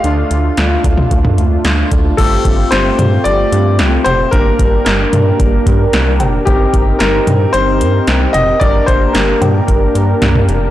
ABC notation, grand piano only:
X:1
M:4/4
L:1/8
Q:1/4=112
K:Gm
V:1 name="Grand piano"
f4- f z3 | A2 c2 d2 z c | B2 B4- B z | G2 B2 c2 z e |
d c B4- B z |]